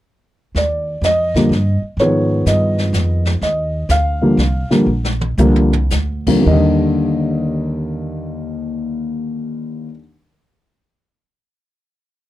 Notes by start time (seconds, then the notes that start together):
0.55 D#2 D5, brush sweep, snare
1.01 F2 D#5, snare, hi-hat pedal
1.35 D3 F3 G3 A#3, kick, snare
1.49 G2, snare
1.82 muted upright bass stroke
1.97 G#2 D#3 C#5, brush sweep, snare
2.01 F3 B3 G#4
2.46 G2 D#5, snare, hi-hat pedal
2.78 snare
2.93 F2, snare, hi-hat pedal
3.25 snare
3.41 D#2 D#5, brush sweep, snare
3.89 D2 F5, snare, hi-hat pedal
4.22 D3 F3 G3 A#3
4.37 C2, snare
4.70 D3 F3 G3 A#3, muted upright bass stroke, snare
4.86 A#1
5.04 snare
5.21 mid tom
5.38 C2 D3 F3 G3 A#3, hi-hat pedal, high tom
5.56 high tom
5.73 floor tom
5.90 D2, snare, hi-hat pedal
6.27 D#2 D3 F3 G3 A#3, kick, crash
6.41 D#2
6.45 D#2 D#3 G3 D#5
6.53 D3